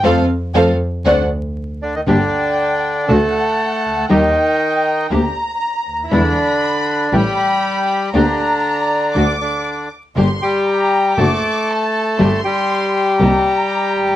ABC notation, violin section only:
X:1
M:4/4
L:1/8
Q:1/4=119
K:Dphr
V:1 name="Violin section"
[Acf] z [Acf] z [cd^f] z3 | [K:Gm] g4 ^f4 | g4 b4 | =b4 b4 |
b4 d'3 z | c'2 b2 d'2 a2 | c'4 b4 |]